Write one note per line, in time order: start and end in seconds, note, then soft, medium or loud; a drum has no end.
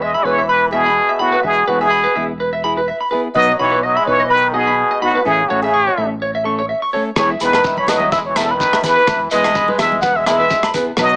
0.00 0.14 E1 medium
0.00 0.15 G#3 medium
0.00 0.16 D#5 medium
0.00 0.10 E5 medium
0.14 0.27 G#3 medium
0.14 0.25 E5 medium
0.14 0.21 B5 medium
0.23 1.00 E1 medium
0.23 0.49 E3 medium
0.23 0.40 B3 soft
0.23 0.40 E4 soft
0.23 0.39 G#4 soft
0.23 0.34 B4 medium
0.23 0.47 C#5 medium
0.38 0.45 E5 medium
0.48 0.71 E3 medium
0.48 0.70 B4 loud
0.48 0.58 B5 medium
0.71 1.23 B2 medium
0.71 0.89 B3 soft
0.71 0.88 E4 soft
0.71 1.22 G#4 medium
0.71 0.87 G#4 soft
0.71 0.81 E5 medium
0.86 0.93 B5 medium
1.09 1.16 E5 medium
1.19 1.47 A2 medium
1.19 1.36 B3 soft
1.19 1.36 E4 soft
1.19 1.47 F#4 medium
1.19 1.35 G#4 medium
1.19 1.28 B5 medium
1.32 1.40 B4 medium
1.43 1.63 E1 medium
1.43 1.70 B2 medium
1.43 1.70 G#4 loud
1.43 1.52 E5 medium
1.67 2.06 E1 medium
1.67 1.82 A2 medium
1.67 1.85 B3 soft
1.67 1.84 E4 soft
1.67 1.81 F#4 medium
1.67 1.84 G#4 medium
1.67 1.76 B4 medium
1.81 2.26 B2 medium
1.81 2.26 G#4 loud
1.81 1.88 E5 medium
1.90 2.00 B5 medium
2.04 2.11 B4 medium
2.16 2.91 E1 medium
2.16 2.32 B3 soft
2.16 2.32 E4 soft
2.16 2.31 G#4 soft
2.16 2.24 E5 medium
2.40 2.49 B4 medium
2.53 2.60 E5 medium
2.64 2.80 E4 medium
2.64 2.79 G#4 medium
2.64 2.73 B5 medium
2.77 2.84 B4 medium
2.88 2.97 E5 medium
3.01 3.08 B5 medium
3.11 3.28 B3 soft
3.11 3.27 E4 medium
3.11 3.27 G#4 medium
3.11 3.20 B4 medium
3.35 3.54 B1 medium
3.35 3.50 F#3 medium
3.35 3.58 F#3 medium
3.35 3.51 B3 medium
3.35 3.51 D#4 medium
3.35 3.51 F#4 medium
3.35 3.44 B4 medium
3.35 3.57 D#5 loud
3.48 3.56 D#5 medium
3.59 3.97 B1 medium
3.59 3.87 E3 loud
3.59 3.75 B3 soft
3.59 3.75 D#4 soft
3.59 3.74 F#4 soft
3.59 3.85 C#5 medium
3.59 3.68 B5 medium
3.72 3.79 B4 medium
3.83 4.00 F#3 medium
3.83 3.92 D#5 medium
3.83 3.97 D#5 loud
3.95 4.08 G#3 medium
3.95 4.05 E5 medium
3.95 4.04 B5 medium
4.06 4.82 B1 medium
4.06 4.23 B3 soft
4.06 4.22 D#4 soft
4.06 4.16 B4 medium
4.06 4.28 C#5 medium
4.06 muted clean electric guitar stroke soft
4.10 4.31 E3 medium
4.20 4.27 D#5 medium
4.29 4.54 B4 loud
4.29 4.39 B5 medium
4.34 4.59 D#3 medium
4.53 4.70 B3 soft
4.53 4.70 D#4 soft
4.53 4.69 F#4 soft
4.53 5.01 G#4 medium
4.53 4.63 D#5 medium
4.57 5.04 B2 medium
4.67 4.75 B5 medium
4.91 4.98 D#5 medium
5.02 5.26 A2 medium
5.02 5.18 B3 soft
5.02 5.18 D#4 medium
5.02 5.17 F#4 medium
5.02 5.25 F#4 medium
5.02 5.11 B5 medium
5.15 5.22 B4 medium
5.25 5.45 A1 medium
5.25 5.53 C#3 medium
5.25 5.41 E3 medium
5.25 5.41 A3 medium
5.25 5.41 C#4 medium
5.25 5.50 G#4 medium
5.25 5.35 E5 medium
5.25 muted clean electric guitar stroke medium
5.49 5.88 A1 medium
5.49 5.63 A2 medium
5.49 5.66 A3 soft
5.49 5.65 C#4 soft
5.49 5.62 F#4 medium
5.49 5.65 A4 soft
5.49 5.59 C#5 medium
5.62 6.08 C#3 medium
5.62 6.07 G#4 loud
5.62 5.71 E5 medium
5.74 5.83 C#6 medium
5.87 5.94 C#5 medium
5.98 6.73 A1 medium
5.98 6.14 A3 soft
5.98 6.14 C#4 soft
5.98 6.13 A4 soft
5.98 6.06 E5 medium
6.22 6.31 C#5 medium
6.35 6.42 E5 medium
6.44 6.61 A3 medium
6.44 6.61 C#4 medium
6.44 6.60 A4 medium
6.44 6.54 C#6 medium
6.59 6.66 C#5 medium
6.69 6.78 E5 medium
6.82 6.90 C#6 medium
6.93 7.10 A3 soft
6.93 7.09 C#4 soft
6.93 7.09 A4 medium
6.93 7.02 C#5 medium
7.16 7.36 E1 medium
7.16 7.33 E3 medium
7.16 7.30 E3 medium
7.16 7.33 B3 medium
7.16 7.33 E4 medium
7.16 7.26 G#4 medium
7.16 7.33 G#4 medium
7.16 7.29 C#5 medium
7.16 kick medium
7.16 cross-stick medium
7.16 low agogo medium
7.16 shekere medium
7.30 7.37 E5 medium
7.40 7.78 E1 medium
7.40 7.77 D#3 medium
7.40 7.57 B3 soft
7.40 7.57 E4 medium
7.40 7.56 G#4 medium
7.40 7.77 B4 medium
7.40 7.50 B5 medium
7.40 closed hi-hat soft
7.40 shekere medium
7.53 7.62 B4 medium
7.53 cross-stick medium
7.53 low agogo medium
7.64 7.74 E5 medium
7.64 kick medium
7.64 shekere medium
7.77 7.93 E3 medium
7.77 7.91 C#5 medium
7.77 7.85 B5 medium
7.77 high conga medium
7.87 8.64 E1 medium
7.87 8.05 B3 soft
7.87 8.04 E4 soft
7.87 8.04 G#4 soft
7.87 7.97 B4 medium
7.87 8.11 D#5 medium
7.87 cross-stick medium
7.87 closed hi-hat medium
7.87 low conga medium
7.87 low agogo medium
7.87 shekere medium
7.92 8.14 F#3 medium
8.00 8.08 E5 medium
8.00 high conga medium
8.12 8.21 G#3 medium
8.12 8.18 E5 loud
8.12 8.21 B5 medium
8.12 kick loud
8.12 shekere medium
8.26 8.40 E3 medium
8.26 8.38 C#5 medium
8.36 8.47 D#3 medium
8.36 8.53 B3 soft
8.36 8.52 E4 soft
8.36 8.52 G#4 soft
8.36 8.43 B4 medium
8.36 8.45 E5 medium
8.36 cross-stick medium
8.36 closed hi-hat medium
8.36 low agogo medium
8.36 shekere medium
8.42 8.53 A4 medium
8.46 8.56 C#3 medium
8.46 8.56 B5 medium
8.51 8.85 D#3 medium
8.51 8.84 B4 medium
8.60 kick medium
8.60 shekere loud
8.73 8.81 E5 medium
8.73 cross-stick medium
8.73 low agogo medium
8.83 9.29 E3 medium
8.83 9.00 B3 soft
8.83 9.00 E4 soft
8.83 8.99 G#4 soft
8.83 9.29 B4 medium
8.83 8.93 B5 medium
8.83 kick medium
8.83 closed hi-hat medium
8.83 low conga medium
8.83 shekere medium
8.97 9.04 B4 medium
9.07 9.27 E1 medium
9.07 9.16 E5 medium
9.07 kick medium
9.07 cross-stick medium
9.07 low agogo medium
9.07 shekere medium
9.31 9.70 E1 medium
9.31 9.77 G#3 loud
9.31 9.48 B3 soft
9.31 9.48 E4 medium
9.31 9.48 G#4 medium
9.31 9.41 B4 medium
9.31 9.76 D#5 medium
9.31 closed hi-hat soft
9.31 shekere medium
9.44 9.52 E5 medium
9.44 cross-stick medium
9.44 low agogo medium
9.55 9.65 B5 medium
9.55 kick medium
9.55 shekere medium
9.68 9.76 B4 medium
9.68 high conga medium
9.78 10.55 E1 medium
9.78 10.02 G#3 medium
9.78 9.96 E4 soft
9.78 9.95 G#4 medium
9.78 10.01 E5 medium
9.78 9.88 E5 medium
9.78 cross-stick medium
9.78 closed hi-hat soft
9.78 low conga medium
9.78 low agogo medium
9.78 shekere medium
9.82 9.96 B3 soft
9.92 high conga medium
10.02 10.18 B3 medium
10.02 10.12 B4 medium
10.02 10.18 F#5 loud
10.02 kick loud
10.02 shekere medium
10.16 10.26 G#3 medium
10.16 10.26 E5 loud
10.16 10.24 E5 medium
10.26 10.71 G#3 medium
10.26 10.43 B3 soft
10.26 10.43 E4 medium
10.26 10.43 G#4 medium
10.26 10.72 E5 loud
10.26 10.36 B5 medium
10.26 cross-stick medium
10.26 closed hi-hat soft
10.26 low agogo medium
10.26 shekere medium
10.40 10.47 B4 medium
10.50 10.60 E5 medium
10.50 kick medium
10.50 shekere loud
10.63 10.71 B5 medium
10.63 cross-stick medium
10.63 low agogo medium
10.74 10.91 B3 soft
10.74 10.91 E4 soft
10.74 10.90 G#4 medium
10.74 10.83 B4 medium
10.74 kick medium
10.74 closed hi-hat soft
10.74 shekere medium
10.97 11.16 B1 medium
10.97 11.14 F#3 medium
10.97 11.16 F#3 medium
10.97 11.15 B3 medium
10.97 11.15 D#4 medium
10.97 11.15 F#4 medium
10.97 11.08 B4 medium
10.97 kick medium
10.97 cross-stick medium
10.97 low agogo medium
10.97 shekere loud
11.02 11.16 D#5 loud
11.12 11.16 D#5 medium